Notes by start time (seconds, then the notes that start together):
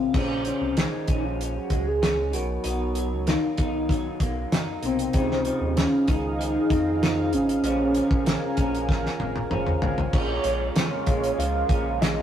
Already playing: A#2 G#3 C4 C#4 F4 G#4 A#4
0.12 A#1 A#2 C#4 G#4 F5, kick, crash
0.17 C#4 C5
0.45 F3 C#4, closed hi-hat
0.61 C2
0.77 G#3 D#4, snare, closed hi-hat
1.08 A#1 C#4, kick, closed hi-hat
1.25 F4
1.41 closed hi-hat
1.56 F#4
1.70 C#2 G#3, kick, closed hi-hat
1.88 G#4
2.02 C#4, snare, closed hi-hat
2.31 B1 B2 D#4 F#4 A#4, closed hi-hat
2.36 C#5
2.64 B1 B2 D#4, closed hi-hat
2.95 F#3, closed hi-hat
3.11 C#2
3.27 A#3 D#4, snare, closed hi-hat
3.58 B1 D#4, kick, closed hi-hat
3.89 F#3, kick, closed hi-hat
4.20 B1 A#3, kick, closed hi-hat
4.52 F#2 D#4, snare, closed hi-hat
4.83 B1 A#3 C4, closed hi-hat
4.99 closed hi-hat
5.13 C#2 C#3 D#4 F4 G#4 D#5 F5, kick, closed hi-hat
5.18 C5
5.31 snare
5.45 F3, closed hi-hat
5.61 D#2
5.77 C#4, snare, closed hi-hat
6.08 C#2 D#4, kick, closed hi-hat
6.39 F3, closed hi-hat
6.70 F2 C4 D#4, kick, closed hi-hat
7.02 D#4 F4 G#4 C5, snare, closed hi-hat
7.32 G#1 C#4, closed hi-hat
7.49 closed hi-hat
7.62 A#1 A#2 C#4 F4 G#4 A#4 G#5, closed hi-hat
7.67 C5
7.95 F3, closed hi-hat
8.11 A#1, kick
8.26 G#3, snare, closed hi-hat
8.57 A#1 C#4, kick, closed hi-hat
8.75 closed hi-hat
8.89 F3, kick, snare
9.06 snare
9.20 G#1 G#3, high tom
9.36 high tom
9.50 G#1 C#4 F4 G#4 C5, mid tom
9.67 mid tom
9.82 G#1 G#3, floor tom
9.98 floor tom
10.11 A#1 A#2 G#3 A#3 C#4 F4 G#4 C#5, kick, crash
10.15 C#3 C#5
10.44 A#1 G#3, closed hi-hat
10.75 F2 C#4 C#5, snare, closed hi-hat
11.07 A#1 G#3, kick, closed hi-hat
11.24 closed hi-hat
11.38 C#2 F3 F5, closed hi-hat
11.69 A#1 C#4, kick, closed hi-hat
12.01 G#3 D#5, snare, closed hi-hat